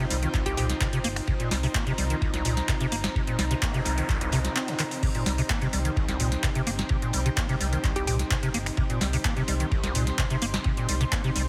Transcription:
Already playing: C4 D#4 F4 C5 G5
0.10 C2 G3, snare, open hi-hat, ride
0.23 D#3, closed hi-hat
0.34 C2, kick, clap, ride
0.46 C2 G4, closed hi-hat, ride
0.57 C2 A#2 G4, open hi-hat, ride
0.70 snare, closed hi-hat
0.81 C3, kick, snare, clap, ride
0.93 C3, closed hi-hat, ride
1.04 G1 A#3, open hi-hat, ride
1.16 finger snap, snare, open hi-hat
1.27 C3, kick, ride
1.40 A#2, closed hi-hat
1.51 C2 G3, snare, open hi-hat, ride
1.55 A#5
1.63 C3, open hi-hat
1.75 A#3, finger snap, kick, snare, clap, ride
1.87 C3, closed hi-hat, ride
1.98 C2 G3, open hi-hat, ride
2.10 D#3, closed hi-hat
2.22 C2, kick, ride
2.34 C2, snare, closed hi-hat
2.45 C2 A#2, snare, open hi-hat, ride
2.57 snare, closed hi-hat
2.68 C3, kick, snare, clap, ride
2.81 C3, closed hi-hat
2.92 G1 A#3, open hi-hat, ride
3.04 snare, closed hi-hat, ride
3.15 C3, kick, ride, noise sweep
3.27 A#2, closed hi-hat
3.39 C2 G3, snare, open hi-hat, ride
3.51 C3, closed hi-hat, ride
3.62 A#3, finger snap, kick, snare, clap, ride
3.74 C3, snare, closed hi-hat
3.85 C2 G3, snare, open hi-hat, ride
3.98 D#3, closed hi-hat
4.09 C2, kick, snare, clap, ride
4.21 C2, closed hi-hat, ride
4.32 C2 C3, snare, open hi-hat, ride
4.45 snare, closed hi-hat, ride
4.55 C4, clap, ride
4.68 C3, snare, closed hi-hat, ride
4.79 D#3, clap, open hi-hat
4.91 open hi-hat, ride
5.03 C3 G4, kick, crash, ride
5.15 A#2, closed hi-hat
5.26 C2 G3, snare, open hi-hat, ride
5.30 G5
5.38 C3, open hi-hat
5.49 A#3, finger snap, kick, snare, clap, ride
5.61 C3, closed hi-hat, ride
5.73 C2 G3, open hi-hat, ride
5.85 D#3, closed hi-hat
5.96 C2, kick, ride
6.08 C2, snare, closed hi-hat
6.20 C2 A#2, open hi-hat, ride
6.32 snare, closed hi-hat
6.43 C3, kick, snare, clap, ride
6.55 C3, closed hi-hat
6.67 G1 A#3, open hi-hat, ride
6.79 snare, closed hi-hat, ride
6.89 C3, kick, ride
7.02 A#2, closed hi-hat
7.13 C2 G3, open hi-hat, ride
7.26 C3, closed hi-hat, ride
7.36 A#3, finger snap, kick, snare, clap, ride
7.49 C3, snare, closed hi-hat
7.60 C2 G3, snare, open hi-hat, ride
7.73 D#3, closed hi-hat
7.84 C2, kick, clap, ride
7.96 C2 G4, closed hi-hat, ride
8.07 C2 A#2 G4, open hi-hat, ride
8.19 snare, closed hi-hat
8.30 C3, kick, snare, clap, ride
8.43 C3, closed hi-hat, ride
8.54 G1 A#3, open hi-hat, ride
8.66 finger snap, snare, open hi-hat
8.77 C3, kick, ride
8.90 A#2, closed hi-hat
9.01 C2 G3, snare, open hi-hat, ride
9.05 C6
9.13 C3, open hi-hat
9.24 A#3, finger snap, kick, snare, clap, ride
9.36 C3, closed hi-hat, ride
9.48 C2 G3, open hi-hat, ride
9.60 D#3, closed hi-hat
9.71 C2, kick, ride
9.84 C2, snare, closed hi-hat
9.95 C2 A#2, open hi-hat, ride
10.07 snare, closed hi-hat
10.18 C3, kick, snare, clap, ride
10.30 C3, closed hi-hat
10.42 G1 A#3, open hi-hat, ride
10.54 snare, closed hi-hat, ride
10.64 C3, kick, ride
10.77 A#2, closed hi-hat
10.89 C2 G3, open hi-hat, ride
11.00 C3, closed hi-hat, ride
11.12 A#3, finger snap, kick, snare, clap, ride
11.24 C3, snare, closed hi-hat
11.35 C2 G3, snare, open hi-hat, ride

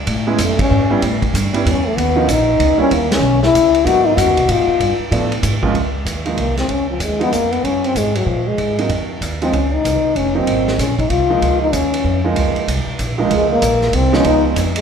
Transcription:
0.07 A2, kick, ride
0.27 G#3 B3 C#4 E4
0.38 F#2 A3, kick, hi-hat pedal, ride
0.59 C#4, kick, ride
0.70 G#2
0.90 G3 B3 C#4 E4
1.02 A2, kick, ride
1.22 kick, ride
1.34 G2, kick, hi-hat pedal, ride
1.53 G3 B3 C#4 E4, ride
1.66 E2 C#4, kick, ride
1.87 A3
1.97 D#2 B3, kick, ride
2.16 F3 A#3 C#4 D#4
2.28 A#1 D#4, kick, hi-hat pedal, ride
2.59 C#2, kick, ride
2.78 G3 A#3 C#4 E4, muted upright bass stroke
2.91 D#2 A#3, kick, ride
3.12 C#4, snare, ride
3.20 B1
3.43 E4, snare
3.54 C#2, kick, hi-hat pedal, ride
3.75 ride
3.84 G#2 F#3 A#3 B3 D#4 F#4, kick, ride
4.07 D#4
4.17 F#2 F#4, kick, hi-hat pedal, ride
4.26 D#2
4.36 B1, ride
4.48 G#2 F4, kick, ride
4.67 muted upright bass stroke
4.79 G2, kick, ride
4.99 muted upright bass stroke
5.10 A2 F3 A3 B3 D4, kick, ride
5.32 ride
5.43 G#2, kick, hi-hat pedal, ride
5.63 C#2 F3 G#3 A#3 C#4, kick
5.74 C#2, kick, ride
6.05 D#2, kick, hi-hat pedal, ride
6.25 F3 G#3 A#3 D#4, ride
6.37 C2 A#3, kick, ride
6.57 C4, snare, ride
6.69 C#2 C#4, kick, ride
6.90 F3
6.99 D#2 G#3, kick, hi-hat pedal, ride
7.19 F3 G#3 B3 D#4, ride
7.32 F2 A#3, kick, hi-hat pedal, ride
7.53 B3, ride
7.64 F#2 C#4, kick, ride
7.84 C4, ride
7.95 G#2 G#3, kick, hi-hat pedal, ride
8.15 F#3, ride
8.26 A#2 F3, kick
8.47 G#3
8.58 G#2, kick, ride
8.78 F#3 A#3 C4 D#4, ride
8.89 F2, kick, ride
9.21 D#2, kick, hi-hat pedal, ride
9.42 F3 G#3 C4 D#4, ride
9.53 C#2 C#4, kick, ride
9.74 D#4
9.84 C2, kick, hi-hat pedal, ride
10.15 F1 C#4, kick, ride
10.34 F#3 A#3 C4 D#4
10.47 G#1, kick, ride
10.68 snare
10.78 A#1 C#4, kick, snare, hi-hat pedal, ride
10.98 D#4, kick, ride
11.10 C2 F4, kick, ride
11.29 F3 G#3 A#3 D#4
11.42 C#2, kick, ride
11.62 D#4
11.73 D#2 C#4, kick, hi-hat pedal, ride
11.94 ride
12.04 F2, kick
12.24 F3 G#3 A#3 D#4
12.36 C#2, kick, ride
12.55 muted upright bass stroke, ride
12.67 C2, kick, hi-hat pedal, ride
12.86 muted upright bass stroke
12.99 A#1, kick, hi-hat pedal, ride
13.18 C#2 F3 G#3 A#3 D#4
13.30 C#2 G#3, kick, ride
13.52 A#3
13.62 A#1, kick, hi-hat pedal, ride
13.81 snare
13.93 C2 C4, kick, ride
14.12 F3 G#3 B3 C#4 D#4, snare
14.24 C#2 D#4, kick, ride
14.56 F2, kick, hi-hat pedal, ride
14.76 G#3, ride

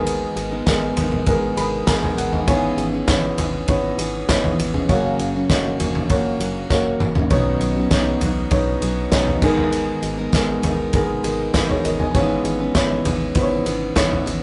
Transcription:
Already playing: G#1 G#2 D#3 G#3 B3 D#4 A#4
0.06 ride, tambourine
0.36 G#1, ride, tambourine
0.51 G#3 B3 D#4 A#4
0.66 G#1 G#3 B3 A#4, kick, snare, ride, tambourine
0.96 G#1 G#3 B3 D#4 A#4, floor tom, ride
1.12 floor tom
1.26 G#1 G#3 B3 A#4, kick, ride
1.56 G#1 G#3 B3 D#4 A#4 B5, ride, tambourine
1.86 G#1 G#3 B3 D#4 A#4 A#5, kick, snare, ride, tambourine
2.03 G#5, floor tom
2.17 G#1 F#5, ride, tambourine
2.32 G#3 B3 D#4 A#4, floor tom
2.47 G#1 G#2 C#3 E3 B3 C#4 E4 G#4 C#5, kick, ride, tambourine
2.78 G#1, ride, tambourine
2.92 E3 B3 C#4 G#4
3.08 G#1 B3 E4 C#5, kick, snare, ride, tambourine
3.37 G#1 E3 B3 C#4 G#4, floor tom, ride, tambourine
3.68 G#1 B3 E4 C#5, kick, ride, tambourine
3.98 G#1 E3 B3 C#4 G#4, ride, tambourine
4.28 G#1 E3 B3 C#4 E4 G#4 C#5, kick, snare, ride, tambourine
4.44 floor tom
4.59 G#1, ride, tambourine
4.74 E3 B3 C#4 G#4, floor tom
4.89 F#1 F#2 C#3 F#3 A#3 C#4 F#4 C#5, kick, ride, tambourine
5.19 F#1, ride, tambourine
5.34 F#3 A#3 C#4 F#4
5.49 F#1 A#3 F#4 C#5, kick, snare, ride, tambourine
5.79 F#1 F#3 A#3 C#4 F#4, floor tom, ride
5.95 floor tom
6.10 F#1 A#3 F#4 C#5, kick, ride, tambourine
6.40 F#1 F#3 A#3 C#4 F#4, ride, tambourine
6.70 F#1 F#3 A#3 C#4 F#4 C#5, kick, snare, tambourine
7.00 F#1, mid tom, tambourine
7.15 F#3 A#3 C#4 F#4, floor tom
7.30 B1 B2 D#3 F#3 B3 C#4 D#4 F#4 C#5, kick, ride, tambourine
7.60 B1, ride, tambourine
7.76 F#3 B3 C#4 F#4
7.91 B1 B3 D#4 C#5, kick, snare, ride, tambourine
8.21 B1 F#3 B3 C#4 F#4, floor tom, ride, tambourine
8.51 B1 B3 D#4 C#5, kick, ride, tambourine
8.81 B1 F#3 B3 C#4 F#4, ride, tambourine
9.11 B1 F#3 B3 C#4 D#4 F#4 C#5, kick, snare, ride, tambourine
9.27 floor tom
9.42 G#1 G#2 D#3 G#3 B3 D#4 A#4, kick, tambourine, crash
9.57 floor tom
9.72 ride, tambourine
10.02 G#1, ride, tambourine
10.17 G#3 B3 D#4 A#4
10.33 G#1 G#3 B3 A#4, kick, snare, ride, tambourine
10.62 G#1 G#3 B3 D#4 A#4, floor tom, ride, tambourine
10.93 G#1 G#3 B3 A#4, kick, ride, tambourine
11.23 G#1 G#3 B3 D#4 A#4, ride, tambourine
11.54 G#1 G#3 B3 D#4 F#4 A#4 B4, kick, snare, ride, tambourine
11.70 G#4 C#5, floor tom
11.84 G#1 A#4 D#5, ride, tambourine
11.99 G#3 B3 D#4 A#4 D#5 G#5, floor tom
12.14 G#1 G#2 C#3 E3 G#3 B3 C#4 E4 B4 C#5, kick, ride, tambourine
12.44 G#1, ride, tambourine
12.59 E3 B3 C#4 B4
12.75 G#1 B3 E4 C#5, kick, snare, ride, tambourine
13.04 G#1 E3 B3 C#4 B4, floor tom, ride, tambourine
13.35 G#1 B3 E4 C5, kick, ride, tambourine
13.42 C#5
13.65 G#1 E3 B3 C#4 B4, ride, tambourine
13.95 G#1 E3 B3 C#4 E4 B4 C#5, kick, snare, ride, tambourine
14.12 floor tom
14.26 G#1, ride, tambourine

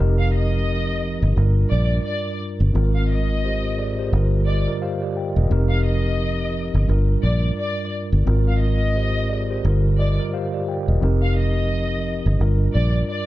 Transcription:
Already playing: F3 C4 D#5
0.00 F1 D#4 G4 A#4
0.19 F5
0.34 D#5
1.22 G1
1.35 G1 G2 G3 D4 F4 A#4
1.69 A#1 D5
2.04 D5
2.60 G1
2.72 G#1 G#2 G#3 C4 F4 A#4
2.94 F5
3.10 D#5
3.44 G4 C5
3.78 G#4 D5
3.99 G4 C5
4.12 G1 G2 D3 G3 F4 A#4
4.46 D5 D#5
4.68 F4 A#4
4.82 G4 C5 F5
5.02 G4 D5
5.17 G5
5.36 E1 A#4 D#5
5.49 F1 F3 C4 D#4 G4 A#4
5.69 F5
5.85 D#5
6.74 G1
6.87 G1 G2 G3 D4 F4 A#4
7.23 A#1 D5
7.58 D5
8.12 G1
8.24 G#1 G#2 G#3 C4 F4 A#4
8.48 F5
8.61 D#5
8.96 G4 C5
9.30 G#4 D5
9.50 G4 C5
9.64 G1 G2 D3 G3 F4 A#4
9.99 D5 D#5
10.19 F4 A#4
10.33 G4 C5 F5
10.53 G4 D5
10.68 G5
10.88 E1 A#4 D#5
11.00 F1 F3 C4 D#4 G4 A#4
11.22 F5
11.38 D#5
12.26 G1
12.38 G1 G2 G3 D4 F4 A#4
12.73 A#1 D5
13.07 D5

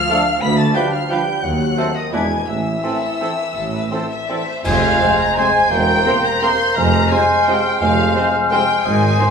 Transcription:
Already playing: F3 F5 F6
0.09 F3 A3 D4 F4 A4 D5
0.41 D2 B3 B5 B6
0.58 A3 A5 A6
0.74 F3 G3 D4 F4 B4 F5 G5 G6
0.92 F3 F5 F6
1.09 F3 G3 D4 F4 B4 F5 G5 G6
1.43 D#2 F#3 F#5 F#6
1.76 D#3 A3 C4 F#4 A4 C5 D#5
1.95 D#3 D#5 D#6
2.12 E1 E2 E3 G#3 B3 D4 E4 B4 D5 G#5 G#6
2.45 A1 A2 E3 E5 E6
2.83 E3 C4 E4 A4 B4
3.03 A4
3.20 E3 C4 E4 A4 C5
3.40 B4
3.56 A1 A2 A4
3.73 B4
3.91 E3 C4 E4 A4 C5
4.10 E5
4.29 E3 C4 E4 A4 D5 E5
4.48 C5
4.64 F1 F2 G#3 C5 F5 G#6, concert bass drum, crash
5.00 C3 G#3 C4 G#4 C5
5.18 A#5
5.36 C3 G#3 C4 G#4 C5 G#5 G#6
5.71 E1 E2 A#3 C5 G5 G6
6.05 C3 A#3 C4 G4 A#4 C5
6.24 A#5
6.41 C3 A#3 C4 G4 A#4 C5 C6 G6
6.76 F1 F2 G#3 C5 A#5 F6
7.11 C3 G#3 C4 F4 G#4 C5 G#5 F6
7.46 C3 G#3 C4 F4 G#4 C5 G5
7.81 F1 F2 G#3 C5 F5 F6
8.16 C3 G#3 C4 F4 G#4 C5
8.51 C3 G#3 C4 F4 G#4 C5 G5
8.85 G#1 G#2 G#3 C5 G#5 D#6
9.18 D#3 G#3 C4 D#4 C5

